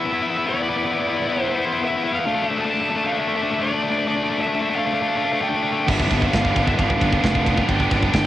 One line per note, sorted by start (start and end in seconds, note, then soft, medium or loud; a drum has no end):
0.00 0.50 E5 medium
0.05 0.12 B3 medium
0.05 0.14 E4 medium
0.13 0.20 B3 medium
0.13 0.22 E4 medium
0.22 0.29 B3 medium
0.22 0.30 E4 medium
0.30 0.37 B3 medium
0.30 0.38 E4 medium
0.37 0.45 B3 medium
0.37 0.46 E4 medium
0.46 0.53 B3 medium
0.46 0.54 E4 loud
0.46 1.42 D5 loud
0.54 0.61 B3 medium
0.54 0.62 E4 medium
0.61 0.69 B3 medium
0.61 0.69 E4 medium
0.69 0.76 B3 medium
0.69 0.77 E4 medium
0.76 0.84 B3 medium
0.76 0.85 E4 medium
0.84 0.91 B3 medium
0.84 0.93 E4 medium
0.91 0.99 B3 medium
0.91 1.01 E4 medium
0.99 1.07 B3 medium
0.99 1.09 E4 medium
1.08 1.14 B3 medium
1.08 1.17 E4 medium
1.14 1.21 B3 medium
1.14 1.25 E4 medium
1.22 1.28 B3 medium
1.22 1.32 E4 medium
1.29 1.36 B3 medium
1.33 1.44 B3 medium
1.33 1.40 E4 medium
1.41 1.51 B3 medium
1.41 1.48 E4 medium
1.41 1.84 C5 loud
1.49 1.58 B3 medium
1.49 1.56 E4 medium
1.57 1.66 B3 medium
1.57 1.65 E4 medium
1.65 1.74 B3 medium
1.65 1.72 E4 medium
1.73 1.81 B3 medium
1.73 1.79 E4 medium
1.79 1.89 B3 medium
1.79 1.87 E4 medium
1.85 1.96 E4 medium
1.85 2.07 E5 loud
1.90 1.97 B3 medium
1.96 2.04 B3 medium
1.96 2.04 E4 medium
2.04 2.12 B3 medium
2.04 2.12 E4 medium
2.04 2.48 F5 loud
2.12 2.19 B3 medium
2.12 2.19 E4 medium
2.20 2.26 B3 medium
2.20 2.27 E4 medium
2.26 2.34 A3 medium
2.26 2.35 D4 medium
2.35 2.42 A3 medium
2.35 2.42 D4 medium
2.42 2.50 A3 medium
2.42 2.50 D4 medium
2.48 2.57 A3 medium
2.48 2.58 D4 medium
2.48 2.61 E5 loud
2.58 2.65 A3 medium
2.58 2.66 D4 medium
2.58 3.08 A5 loud
2.65 2.73 A3 medium
2.65 2.73 D4 medium
2.73 2.81 A3 medium
2.73 2.81 D4 medium
2.81 2.89 A3 medium
2.81 2.90 D4 medium
2.89 2.96 A3 medium
2.89 2.97 D4 medium
2.96 3.04 A3 medium
2.96 3.05 D4 medium
3.04 3.12 A3 medium
3.04 3.12 D4 medium
3.04 3.16 F5 medium
3.13 3.20 A3 medium
3.13 3.20 D4 medium
3.13 3.62 E5 loud
3.21 3.28 A3 loud
3.21 3.29 D4 medium
3.28 3.36 A3 medium
3.28 3.36 D4 medium
3.36 3.43 A3 medium
3.36 3.43 D4 loud
3.43 3.51 A3 medium
3.43 3.51 D4 medium
3.51 3.59 A3 medium
3.51 3.60 D4 medium
3.59 3.66 A3 medium
3.59 3.68 D4 medium
3.59 4.07 D5 loud
3.67 3.73 A3 medium
3.67 3.74 D4 medium
3.73 3.81 A3 medium
3.73 3.82 D4 medium
3.82 3.90 A3 medium
3.82 3.91 D4 medium
3.90 3.98 A3 medium
3.90 3.98 D4 medium
3.98 4.06 A3 medium
3.98 4.06 D4 medium
4.07 4.15 A3 medium
4.07 4.16 D4 medium
4.07 4.41 D5 loud
4.15 4.23 A3 medium
4.15 4.23 D4 medium
4.23 4.30 A3 medium
4.23 4.31 D4 medium
4.30 4.38 A3 medium
4.30 4.39 D4 medium
4.38 4.46 A3 medium
4.38 4.47 D4 medium
4.38 4.75 E5 loud
4.47 4.54 A3 medium
4.47 4.55 D4 medium
4.54 4.61 A3 medium
4.54 4.62 D4 medium
4.62 4.69 A3 medium
4.62 4.70 D4 medium
4.70 4.77 A3 medium
4.70 4.78 D4 medium
4.75 4.85 A3 medium
4.75 4.85 D4 medium
4.75 5.45 F5 medium
4.86 4.93 A3 medium
4.86 4.93 D4 medium
4.94 5.01 A3 medium
4.94 5.01 D4 medium
5.02 5.09 A3 medium
5.02 5.08 D4 medium
5.08 5.16 A3 medium
5.08 5.16 D4 medium
5.17 5.24 A3 medium
5.17 5.25 D4 medium
5.24 5.32 A3 medium
5.24 5.32 D4 medium
5.32 5.41 A3 medium
5.32 5.40 D4 medium
5.41 5.49 A3 medium
5.41 5.49 D4 medium
5.41 5.85 G5 loud
5.49 5.56 A3 medium
5.49 5.56 D4 medium
5.56 5.63 A3 medium
5.56 5.62 D4 medium
5.63 5.72 A3 medium
5.63 5.70 D4 medium
5.72 5.80 A3 medium
5.72 5.79 D4 medium
5.79 5.87 A3 medium
5.79 5.87 D4 medium
5.87 6.07 G1 loud
5.87 5.94 G2 medium
5.87 5.95 D3 medium
5.87 5.96 B3 medium
5.87 5.96 D4 medium
5.87 6.22 E5 loud
5.87 kick medium
5.87 crash loud
5.95 6.02 G2 medium
5.95 6.03 D3 medium
5.95 6.02 B3 medium
5.95 6.04 D4 medium
6.00 6.10 G2 medium
6.00 6.10 B3 medium
6.00 kick medium
6.04 6.11 D3 medium
6.04 6.11 D4 medium
6.11 6.29 G1 medium
6.11 6.18 G2 medium
6.11 6.19 D3 medium
6.11 6.17 B3 medium
6.11 6.19 D4 medium
6.11 kick medium
6.11 ride medium
6.18 6.26 G2 medium
6.18 6.25 D3 medium
6.18 6.26 B3 medium
6.18 6.27 D4 medium
6.22 6.34 D3 medium
6.22 6.67 F5 medium
6.22 kick medium
6.27 6.33 G2 medium
6.27 6.34 B3 medium
6.27 6.35 D4 medium
6.33 6.52 G1 medium
6.33 6.42 G2 medium
6.33 6.43 D3 medium
6.33 6.42 B3 medium
6.33 6.43 D4 medium
6.33 kick medium
6.33 snare loud
6.33 ride loud
6.42 6.50 G2 medium
6.42 6.50 D3 medium
6.42 6.50 B3 medium
6.42 6.51 D4 medium
6.42 kick medium
6.50 6.57 G2 medium
6.50 6.58 D3 medium
6.50 6.58 B3 medium
6.50 6.58 D4 medium
6.56 6.75 G1 medium
6.56 6.65 G2 medium
6.56 6.66 D3 medium
6.56 6.66 B3 medium
6.56 6.66 D4 medium
6.56 kick medium
6.56 ride medium
6.66 6.73 G2 medium
6.66 6.74 D3 medium
6.66 6.74 B3 medium
6.66 6.74 D4 medium
6.66 6.78 E5 medium
6.66 kick medium
6.74 6.81 G2 medium
6.74 6.81 D3 medium
6.74 6.80 B3 medium
6.74 6.82 D4 medium
6.79 6.97 G1 medium
6.79 6.89 G2 medium
6.79 6.89 D3 medium
6.79 6.89 B3 medium
6.79 7.71 F5 loud
6.79 kick medium
6.79 ride loud
6.83 6.89 D4 medium
6.89 6.96 G2 medium
6.89 6.97 D3 medium
6.89 6.97 B3 medium
6.89 6.98 D4 medium
6.89 kick medium
6.96 7.03 G2 medium
6.96 7.05 D3 medium
6.96 7.04 B3 medium
6.96 7.05 D4 medium
7.01 7.19 G1 medium
7.01 7.11 G2 medium
7.01 7.12 B3 medium
7.01 kick medium
7.01 ride medium
7.06 7.12 D3 medium
7.06 7.12 D4 medium
7.12 7.20 G2 medium
7.12 7.20 D3 medium
7.12 7.20 B3 medium
7.12 7.20 D4 medium
7.12 kick medium
7.20 7.60 F1 loud
7.20 7.27 G2 medium
7.20 7.28 D3 medium
7.20 7.28 B3 medium
7.20 7.28 D4 medium
7.20 kick medium
7.20 ride loud
7.25 7.35 G2 medium
7.25 7.36 D3 medium
7.25 7.35 B3 medium
7.25 7.35 D4 medium
7.25 snare loud
7.35 7.43 G2 medium
7.35 7.44 D3 medium
7.35 7.43 B3 medium
7.35 7.43 D4 medium
7.35 kick loud
7.43 7.50 G2 medium
7.43 7.51 D3 medium
7.43 7.51 B3 medium
7.43 7.51 D4 medium
7.43 kick loud
7.43 ride medium
7.51 7.58 G2 medium
7.51 7.59 D3 medium
7.51 7.58 B3 medium
7.51 7.59 D4 medium
7.57 7.66 G2 medium
7.57 7.67 D3 medium
7.57 7.66 B3 medium
7.57 7.68 D4 medium
7.57 kick medium
7.68 7.87 G1 loud
7.68 7.75 G2 medium
7.68 7.76 D3 medium
7.68 7.76 B3 medium
7.68 7.76 D4 loud
7.68 8.27 G5 loud
7.68 kick medium
7.68 ride loud
7.75 7.83 G2 medium
7.75 7.85 D3 medium
7.75 7.83 B3 medium
7.75 7.84 D4 medium
7.80 7.91 G2 medium
7.80 kick medium
7.84 7.92 D3 medium
7.84 7.91 B3 medium
7.84 7.92 D4 medium
7.91 8.10 G1 medium
7.91 7.99 G2 medium
7.91 8.00 D3 medium
7.91 7.99 B3 medium
7.91 8.00 D4 medium
7.91 kick medium
7.91 ride medium
7.99 8.07 G2 medium
7.99 8.07 D3 medium
7.99 8.07 B3 medium
7.99 8.08 D4 medium
7.99 kick medium
8.07 8.14 G2 medium
8.07 8.15 D3 medium
8.07 8.14 B3 medium
8.07 8.15 D4 medium
8.13 8.27 G1 medium
8.13 8.22 G2 medium
8.13 8.22 D3 medium
8.13 8.22 B3 medium
8.13 8.23 D4 loud
8.13 kick medium
8.13 snare loud
8.13 ride loud
8.23 8.27 G2 medium
8.23 8.27 D3 medium
8.23 8.27 B3 medium